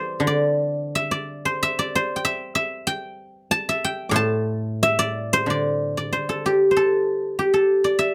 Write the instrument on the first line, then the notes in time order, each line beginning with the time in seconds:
guzheng
Already playing: E3 A4 C5 D5 E5
0.20 D3
0.27 D5
0.95 E5
1.11 D5
1.45 C5
1.63 E5
1.79 D5
1.95 C5
2.16 G5
2.25 E5
2.55 E5
2.87 G5
3.51 A5
3.69 E5
3.84 G5
4.09 A2 D6
4.14 A5 C6
4.83 E5
4.99 D5
5.33 C5
5.46 D3 D5
5.97 D5
6.13 C5
6.29 A4
6.46 G4
6.71 C5
6.77 A4
7.39 G4
7.54 A4
7.84 D5
7.99 E5